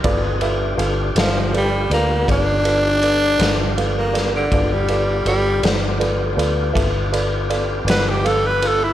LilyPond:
<<
  \new Staff \with { instrumentName = "Upright piano" } { \time 12/8 \key g \mixolydian \tempo 4. = 54 <f' a' b' d''>8 <f' a' b' e''>8 <f' a' b' f''>8 <f' a' b' e''>8 <f' a' b' d''>8 <f' a' b' d''>8 <f' a' b' d''>8 <f' a' b' d''>8 <f' a' b' d''>8 <f' a' b' f''>8 <f' a' b' f''>8 <f' a' b' d''>8 | <f' a' b' d''>8 <f' a' b' d''>8 <f' a' b' d''>8 <f' a' b' d''>8 <f' a' b' d''>8 <f' a' b' d''>8 <f' a' b' e''>8 <f' a' b' d''>8 <f' a' b' d''>8 <f' a' b' d''>8 <f' a' b' f''>8 <f' a' b' f''>8 | }
  \new Staff \with { instrumentName = "Tonewheel organ" } { \time 12/8 \key g \mixolydian <c' ees' fis' aes'>8 <g d' f' g'>1~ <g d' f' g'>4. | <b d' f' g'>1. | }
  \new Staff \with { instrumentName = "Tenor saxophone" } { \time 12/8 \key g \mixolydian r4. f8 g8 bes8 d'2~ d'16 bes8 d16~ | d16 g8. g8 r2. b'16 g'16 a'16 b'16 a'16 e'16 | }
  \new Staff \with { instrumentName = "Fingered electric bass" } { \clef bass \time 12/8 \key g \mixolydian g,,4 g,,8 g,,4 d,8 g,,4. g,,4. | g,,4 g,,8 g,,4 d,8 g,,4. g,,4. | }
  \new DrumStaff \with { instrumentName = "Drums" } \drummode { \time 12/8 <bd cymr>8 cymr8 cymr8 <cymr sn>8 cymr8 cymr8 <bd cymr>8 cymr8 cymr8 <cymr sn>8 cymr8 <cymr sn>8 | <bd cymr>8 cymr8 cymr8 <cymr sn>8 cymr8 cymr8 <bd cymr>8 cymr8 cymr8 <cymr sn>8 cymr8 cymr8 | }
>>